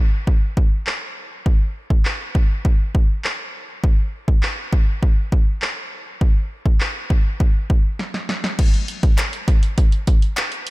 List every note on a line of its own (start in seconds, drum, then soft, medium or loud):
0.27 kick loud
0.57 kick medium
0.87 clap loud
1.46 kick loud
1.90 kick medium
2.05 clap loud
2.35 kick medium
2.65 kick loud
2.95 kick loud
3.24 clap loud
3.84 kick loud
4.28 kick medium
4.43 clap loud
4.73 kick medium
5.03 kick loud
5.32 kick medium
5.62 clap loud
6.21 kick loud
6.66 kick medium
6.80 clap loud
7.10 kick medium
7.40 kick medium
7.70 kick medium
7.99 snare medium
8.14 snare medium
8.29 snare medium
8.44 snare medium
8.59 kick loud
8.59 closed hi-hat medium
8.59 crash loud
8.74 closed hi-hat soft
8.88 closed hi-hat medium
9.03 kick medium
9.03 closed hi-hat medium
9.18 clap loud
9.18 clap medium
9.18 closed hi-hat medium
9.33 closed hi-hat medium
9.48 kick loud
9.48 closed hi-hat medium
9.63 closed hi-hat medium
9.78 kick loud
9.78 closed hi-hat medium
9.92 closed hi-hat soft
10.07 kick loud
10.07 closed hi-hat medium
10.22 closed hi-hat medium
10.37 clap medium
10.37 clap loud
10.37 closed hi-hat loud
10.52 closed hi-hat medium
10.67 closed hi-hat medium